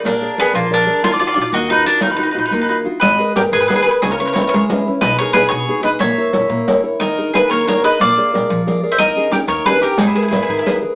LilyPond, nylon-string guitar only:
\new Staff \with { instrumentName = "Nylon-string guitar" } { \time 6/8 \key ees \minor \tempo 4. = 121 <bes aes' bes' d''>8 <aes' bes' d''>8 <aes' bes' d''>8 f8 <aes' bes' d''>8 <aes' bes' d''>8 | ees8 <ees' f' ges'>8 <ees' f' ges'>8 bes8 <ees' f' ges'>8 <ees' f' ges'>8 | ees8 <ees' f' ges'>8 <ees' f' ges'>8 bes8 <ees' f' ges'>8 <ees' f' ges'>8 | \key dis \phrygian gis8 <gis' ais' b'>8 <gis' ais' b'>8 dis8 <gis' ais' b'>8 <gis' ais' b'>8 |
cis8 <cis' e' b'>8 <cis' e' b'>8 gis8 <cis' e' b'>8 <cis' e' b'>8 | b,8 <b dis' gis'>8 <b dis' gis'>8 b,8 <b dis' gis'>8 <b dis' gis'>8 | ais8 <e' ais' cis''>8 <e' ais' cis''>8 ais8 <e' ais' cis''>8 <e' ais' cis''>8 | dis8 <dis' gis' ais'>8 <dis' gis' ais'>8 ais8 <dis' gis' ais'>8 <dis' gis' ais'>8 |
ais8 <gis' ais' d''>8 <gis' ais' d''>8 eis8 <gis' ais' d''>8 <gis' ais' d''>8 | dis8 <cis' dis' gis'>8 <cis' dis' gis'>8 dis8 <cis' dis' g'>8 <cis' dis' g'>8 | gis8 <gis' ais' b'>8 <gis' ais' b'>8 dis8 <gis' ais' b'>8 <gis' ais' b'>8 | }